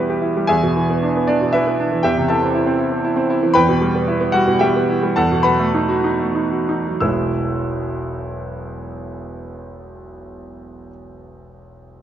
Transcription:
Already playing: E2 B2 G3 B3 E4 G4 B4 E5 F#5
0.10 G4
0.22 E4
0.37 G3
0.47 E2 G#4 E5 G#5
0.63 B2
0.76 E3
0.90 B3
1.03 D4
1.16 B3
1.27 E3 D4 D5
1.41 B2
1.53 E3 E4 B4 E5
1.67 B3
1.80 D4
1.91 E3
2.03 E2 G4 E5 G5
2.17 C3
2.28 E3 A4 E5 A5
2.42 C4
2.55 E4
2.67 C4
2.79 E4
2.92 C4
3.05 E4
3.16 C4
3.30 E4
3.43 E3
3.54 E2 B4 G5 B5
3.69 B2
3.81 G3
3.95 B3
4.08 E4
4.20 B3
4.32 G3 F#4 F#5
4.47 B2
4.59 G3 G4 E5 G5
4.76 B3
4.89 E4
5.03 G3
5.16 E2 A4 F#5 A5
5.32 B2
5.43 F#3 B4 F#5 B5
5.60 A3
5.74 D#4
5.89 F#4
6.04 D#4
6.19 A3
6.35 D#4
6.52 F#4
6.69 D#4
6.87 F#3
7.00 E1 B1 E3 G#3 B3 E4 E6

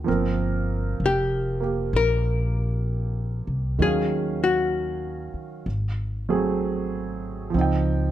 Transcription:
0.04 G1 F3 A#3 C4
0.08 A#4
1.00 F1
1.06 G4
1.60 A#3 G4
1.93 A#1 A#4
3.47 C2
3.79 D#2 D#3 F#3 C#4 G#4
3.84 F5
4.44 F#4
5.34 muted upright bass stroke
5.66 G#1
6.29 F#3 A3 C4 G#4
7.50 F3
7.54 C#2 C4 D#4
7.61 G5

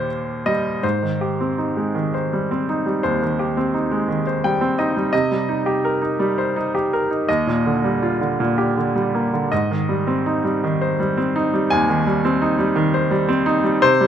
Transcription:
Already playing: D#2 A#2 D#3 G4 A#4 C5 C#5
0.46 G3 D#5
0.83 G#2 C5
1.02 D#3
1.21 G4
1.41 C4
1.58 D#4
1.77 G#3
1.95 D#3
2.14 C5
2.33 G3
2.51 C4
2.69 D#4
2.86 G3
3.03 D#2 C5
3.23 D#3
3.39 G4
3.57 C4
3.74 D#4
3.92 G#3
4.09 D#3
4.27 C5
4.44 G3 G5
4.61 C4
4.79 D#4 D#5
4.96 G3
5.13 C3 D#5
5.32 G3
5.49 D#4
5.66 G4
5.85 A#4
6.02 D#4
6.19 G3
6.38 C5
6.56 D#4
6.75 G4
6.93 A#4
7.11 D#4
7.29 D#2 D#5
7.47 A#2
7.66 D3
7.84 G3
8.03 F4
8.21 D3
8.40 A#2
8.58 G4
8.77 D3
8.95 G3
9.15 A#3
9.33 D3
9.52 G#2 D#5
9.71 D#3
9.89 G3
10.07 C4
10.26 D#4
10.44 G3
10.64 D#3
10.81 C5
11.00 G3
11.17 C4
11.36 D#4
11.53 G3
11.70 D#2 G#5
11.89 D#3
12.07 G3
12.25 C4
12.42 D#4
12.59 G3
12.76 D#3
12.94 C5
13.11 G3
13.29 C4
13.46 D#4
13.64 G3
13.82 C3 C5
14.01 G3

